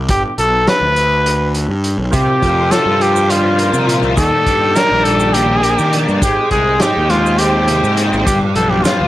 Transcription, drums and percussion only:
0.09 kick medium
0.09 closed hi-hat medium
0.38 closed hi-hat soft
0.67 snare medium
0.67 closed hi-hat medium
0.96 closed hi-hat medium
1.26 closed hi-hat medium
1.54 closed hi-hat soft
1.84 closed hi-hat medium
2.13 kick loud
2.13 closed hi-hat medium
2.13 maracas medium
2.42 kick medium
2.42 closed hi-hat soft
2.42 maracas soft
2.71 snare medium
2.71 closed hi-hat medium
2.71 maracas medium
3.01 closed hi-hat medium
3.16 maracas medium
3.30 closed hi-hat medium
3.30 maracas soft
3.59 closed hi-hat medium
3.59 maracas soft
3.74 maracas medium
3.89 closed hi-hat medium
4.03 maracas soft
4.17 kick loud
4.17 closed hi-hat medium
4.17 maracas medium
4.46 kick medium
4.46 closed hi-hat medium
4.46 maracas soft
4.76 snare medium
4.76 closed hi-hat medium
4.76 maracas medium
5.05 closed hi-hat medium
5.20 maracas medium
5.34 closed hi-hat medium
5.34 maracas soft
5.63 closed hi-hat medium
5.63 maracas soft
5.79 maracas medium
5.93 closed hi-hat medium
6.09 maracas soft
6.22 kick medium
6.22 closed hi-hat medium
6.22 maracas loud
6.51 kick medium
6.51 closed hi-hat soft
6.51 maracas soft
6.80 snare medium
6.80 closed hi-hat medium
6.80 maracas medium
7.10 snare soft
7.10 closed hi-hat soft
7.26 maracas medium
7.38 closed hi-hat medium
7.38 maracas soft
7.68 closed hi-hat medium
7.68 maracas soft
7.84 maracas medium
7.97 closed hi-hat medium
8.13 maracas soft
8.27 kick loud
8.27 closed hi-hat medium
8.27 maracas medium
8.55 closed hi-hat medium
8.55 maracas soft
8.85 snare medium
8.85 closed hi-hat medium
8.85 maracas medium

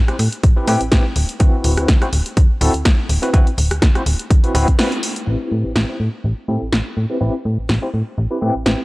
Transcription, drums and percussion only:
0.08 cross-stick medium
0.08 closed hi-hat soft
0.19 open hi-hat loud
0.32 closed hi-hat medium
0.43 kick loud
0.43 closed hi-hat medium
0.68 open hi-hat medium
0.81 closed hi-hat medium
0.92 kick loud
0.92 snare loud
0.92 closed hi-hat medium
1.16 open hi-hat loud
1.29 closed hi-hat soft
1.40 kick loud
1.40 closed hi-hat medium
1.64 open hi-hat loud
1.77 cross-stick medium
1.77 closed hi-hat soft
1.88 kick loud
1.88 snare loud
1.88 closed hi-hat medium
2.02 cross-stick medium
2.02 closed hi-hat soft
2.13 open hi-hat loud
2.26 closed hi-hat medium
2.37 kick loud
2.37 closed hi-hat medium
2.61 open hi-hat loud
2.74 closed hi-hat medium
2.85 kick loud
2.85 snare loud
2.85 closed hi-hat medium
3.09 open hi-hat medium
3.23 closed hi-hat medium
3.34 kick loud
3.34 closed hi-hat medium
3.47 closed hi-hat soft
3.58 open hi-hat loud
3.71 cross-stick medium
3.71 closed hi-hat medium
3.82 kick loud
3.82 snare loud
3.82 closed hi-hat medium
3.95 cross-stick medium
3.95 closed hi-hat soft
4.06 open hi-hat loud
4.19 closed hi-hat medium
4.30 kick loud
4.30 closed hi-hat medium
4.44 closed hi-hat soft
4.55 cross-stick medium
4.55 open hi-hat loud
4.68 kick medium
4.68 closed hi-hat medium
4.79 snare loud
4.79 open hi-hat medium
4.92 closed hi-hat soft
5.03 open hi-hat loud
5.16 closed hi-hat medium
5.76 snare loud
6.73 snare loud
7.69 snare loud
8.66 snare loud

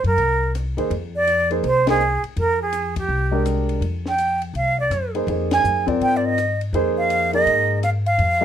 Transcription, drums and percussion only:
0.04 ride soft
0.18 ride medium
0.55 cross-stick medium
0.55 hi-hat pedal medium
0.55 ride medium
0.78 ride medium
0.91 ride medium
1.27 hi-hat pedal soft
1.27 ride medium
1.51 ride soft
1.64 ride medium
1.87 snare medium
1.87 ride medium
2.00 hi-hat pedal soft
2.24 ride soft
2.37 ride medium
2.73 hi-hat pedal medium
2.73 ride medium
2.96 kick medium
2.96 ride medium
3.46 cross-stick medium
3.46 hi-hat pedal medium
3.46 ride medium
3.69 ride soft
3.82 ride medium
4.06 snare soft
4.18 hi-hat pedal medium
4.18 ride medium
4.42 ride soft
4.55 ride medium
4.91 cross-stick medium
4.91 hi-hat pedal medium
4.91 ride medium
5.15 ride soft
5.28 ride medium
5.51 snare medium
5.51 ride medium
5.64 hi-hat pedal medium
5.88 kick medium
5.88 ride soft
6.01 ride soft
6.38 cross-stick medium
6.38 hi-hat pedal medium
6.38 ride medium
6.61 ride soft
6.74 ride medium
7.10 hi-hat pedal medium
7.10 ride medium
7.33 ride soft
7.47 ride medium
7.83 cross-stick medium
7.83 hi-hat pedal medium
7.83 ride medium
8.06 ride medium
8.19 ride medium

